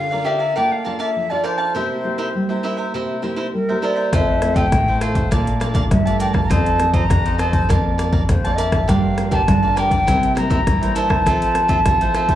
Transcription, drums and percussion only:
4.13 kick medium
4.13 cross-stick medium
4.13 closed hi-hat medium
4.42 cross-stick medium
4.42 closed hi-hat soft
4.56 kick medium
4.56 closed hi-hat soft
4.72 kick medium
4.72 cross-stick medium
4.72 closed hi-hat medium
5.01 cross-stick medium
5.01 closed hi-hat soft
5.15 kick medium
5.15 closed hi-hat soft
5.32 kick medium
5.32 cross-stick medium
5.32 closed hi-hat medium
5.47 closed hi-hat soft
5.61 cross-stick medium
5.61 closed hi-hat soft
5.75 kick medium
5.75 closed hi-hat soft
5.91 kick medium
5.91 cross-stick medium
5.91 closed hi-hat soft
6.07 closed hi-hat soft
6.20 closed hi-hat soft
6.34 kick medium
6.34 cross-stick medium
6.51 kick medium
6.51 cross-stick medium
6.51 closed hi-hat medium
6.66 closed hi-hat soft
6.80 cross-stick medium
6.80 closed hi-hat soft
6.94 kick medium
6.94 closed hi-hat soft
7.10 kick medium
7.10 cross-stick medium
7.10 closed hi-hat medium
7.26 closed hi-hat soft
7.39 cross-stick medium
7.39 closed hi-hat soft
7.53 kick medium
7.53 closed hi-hat soft
7.70 kick medium
7.70 cross-stick medium
7.70 closed hi-hat medium
7.99 cross-stick medium
7.99 closed hi-hat soft
8.13 kick medium
8.29 kick medium
8.29 cross-stick soft
8.29 closed hi-hat medium
8.45 closed hi-hat soft
8.58 closed hi-hat soft
8.72 kick medium
8.72 cross-stick medium
8.72 closed hi-hat soft
8.89 kick medium
8.89 cross-stick medium
8.89 closed hi-hat medium
9.18 cross-stick medium
9.18 closed hi-hat soft
9.32 kick medium
9.32 closed hi-hat soft
9.48 kick medium
9.48 cross-stick medium
9.48 closed hi-hat medium
9.77 cross-stick medium
9.77 closed hi-hat soft
9.91 kick medium
9.91 closed hi-hat soft
10.08 kick medium
10.08 cross-stick medium
10.08 closed hi-hat medium
10.23 closed hi-hat soft
10.37 cross-stick medium
10.37 closed hi-hat soft
10.51 kick medium
10.51 closed hi-hat soft
10.67 kick medium
10.67 cross-stick medium
10.67 closed hi-hat medium
10.83 closed hi-hat soft
10.96 closed hi-hat soft
11.10 kick medium
11.10 cross-stick medium
11.26 kick medium
11.26 cross-stick medium
11.26 closed hi-hat medium
11.42 closed hi-hat soft
11.55 cross-stick medium
11.55 closed hi-hat soft
11.69 kick medium
11.69 closed hi-hat soft
11.86 kick medium
11.86 cross-stick medium
11.86 closed hi-hat medium
12.01 closed hi-hat soft
12.14 cross-stick medium
12.14 closed hi-hat soft
12.29 kick medium
12.29 closed hi-hat soft

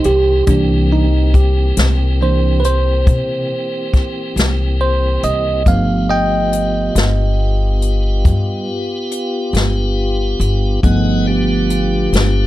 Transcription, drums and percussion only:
0.04 closed hi-hat soft
0.47 kick medium
0.47 closed hi-hat medium
1.34 kick medium
1.34 closed hi-hat medium
1.77 snare loud
1.77 closed hi-hat medium
2.64 closed hi-hat medium
3.07 kick medium
3.07 closed hi-hat medium
3.94 kick medium
3.94 snare soft
3.94 closed hi-hat medium
4.37 snare medium
4.37 closed hi-hat medium
5.23 closed hi-hat medium
5.66 kick medium
5.66 closed hi-hat medium
6.53 closed hi-hat medium
6.96 snare loud
6.96 closed hi-hat medium
7.82 closed hi-hat medium
8.25 kick medium
8.25 closed hi-hat medium
9.11 closed hi-hat medium
9.54 snare loud
9.54 closed hi-hat medium
10.41 closed hi-hat soft
10.83 kick medium
10.83 closed hi-hat medium
11.70 closed hi-hat medium
12.13 snare loud
12.13 closed hi-hat medium

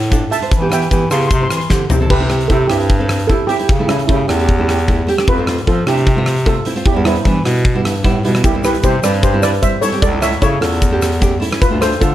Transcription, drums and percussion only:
0.02 closed hi-hat medium
0.12 kick loud
0.12 closed hi-hat medium
0.12 shaker medium
0.32 closed hi-hat medium
0.32 shaker medium
0.42 closed hi-hat medium
0.52 kick loud
0.52 closed hi-hat medium
0.52 shaker medium
0.72 cross-stick medium
0.72 closed hi-hat loud
0.72 shaker medium
0.82 closed hi-hat medium
0.82 shaker soft
0.91 kick medium
0.91 closed hi-hat medium
0.91 shaker medium
1.11 cross-stick medium
1.11 closed hi-hat medium
1.11 shaker medium
1.21 closed hi-hat medium
1.31 kick loud
1.31 closed hi-hat medium
1.31 shaker medium
1.50 cross-stick loud
1.50 closed hi-hat medium
1.50 shaker medium
1.61 closed hi-hat medium
1.61 shaker soft
1.70 kick medium
1.70 snare medium
1.70 shaker medium
1.90 floor tom loud
1.90 shaker medium
2.10 kick loud
2.10 crash loud
2.30 cross-stick medium
2.30 closed hi-hat medium
2.41 closed hi-hat medium
2.50 kick medium
2.50 closed hi-hat medium
2.70 cross-stick medium
2.70 closed hi-hat loud
2.80 closed hi-hat medium
2.89 kick loud
2.89 closed hi-hat medium
3.09 cross-stick loud
3.09 closed hi-hat loud
3.19 closed hi-hat medium
3.29 kick medium
3.29 closed hi-hat medium
3.49 closed hi-hat medium
3.59 closed hi-hat medium
3.69 kick loud
3.69 closed hi-hat medium
3.89 cross-stick loud
3.89 closed hi-hat loud
3.99 closed hi-hat medium
4.09 kick loud
4.09 closed hi-hat medium
4.29 cross-stick medium
4.29 closed hi-hat loud
4.39 closed hi-hat medium
4.49 kick loud
4.49 closed hi-hat medium
4.69 cross-stick medium
4.69 closed hi-hat loud
4.79 closed hi-hat medium
4.88 kick medium
4.88 closed hi-hat medium
5.08 closed hi-hat medium
5.18 cross-stick medium
5.18 closed hi-hat medium
5.27 kick loud
5.27 closed hi-hat medium
5.47 cross-stick medium
5.47 closed hi-hat medium
5.58 closed hi-hat medium
5.67 kick medium
5.67 closed hi-hat medium
5.87 cross-stick medium
5.87 closed hi-hat medium
5.97 closed hi-hat medium
6.07 kick loud
6.07 closed hi-hat medium
6.26 cross-stick loud
6.26 closed hi-hat loud
6.37 closed hi-hat medium
6.46 kick medium
6.46 closed hi-hat medium
6.65 closed hi-hat medium
6.76 closed hi-hat medium
6.85 kick loud
6.85 closed hi-hat medium
7.05 cross-stick medium
7.05 closed hi-hat medium
7.16 closed hi-hat medium
7.25 kick loud
7.25 closed hi-hat medium
7.45 cross-stick medium
7.45 closed hi-hat medium
7.56 closed hi-hat medium
7.65 kick loud
7.65 closed hi-hat medium
7.85 cross-stick loud
7.85 closed hi-hat loud
7.96 closed hi-hat medium
8.04 kick loud
8.04 closed hi-hat medium
8.25 closed hi-hat medium
8.35 cross-stick medium
8.35 closed hi-hat medium
8.44 kick loud
8.44 closed hi-hat medium
8.44 shaker medium
8.64 cross-stick loud
8.64 closed hi-hat medium
8.64 shaker medium
8.74 closed hi-hat medium
8.74 shaker soft
8.83 kick medium
8.83 closed hi-hat medium
8.83 shaker medium
9.03 cross-stick medium
9.03 closed hi-hat medium
9.03 shaker loud
9.14 closed hi-hat medium
9.23 kick loud
9.23 closed hi-hat medium
9.23 shaker medium
9.43 cross-stick loud
9.43 closed hi-hat loud
9.43 shaker medium
9.54 closed hi-hat medium
9.63 kick medium
9.63 closed hi-hat medium
9.63 shaker medium
9.82 closed hi-hat medium
9.82 shaker loud
9.92 closed hi-hat medium
10.02 kick loud
10.02 closed hi-hat medium
10.02 shaker medium
10.22 cross-stick loud
10.22 closed hi-hat loud
10.22 shaker loud
10.32 closed hi-hat medium
10.32 shaker soft
10.42 kick medium
10.42 closed hi-hat medium
10.42 shaker medium
10.62 cross-stick medium
10.62 closed hi-hat loud
10.72 closed hi-hat medium
10.82 kick loud
10.82 closed hi-hat medium
10.82 shaker medium
11.02 cross-stick loud
11.02 closed hi-hat loud
11.02 shaker medium
11.12 closed hi-hat medium
11.22 kick loud
11.22 closed hi-hat medium
11.22 shaker medium
11.42 closed hi-hat medium
11.53 cross-stick medium
11.53 closed hi-hat medium
11.62 kick loud
11.62 closed hi-hat medium
11.62 shaker medium
11.82 cross-stick medium
11.82 closed hi-hat loud
11.82 shaker medium
11.92 closed hi-hat medium
11.92 shaker soft
12.01 kick medium
12.01 closed hi-hat medium
12.01 shaker medium

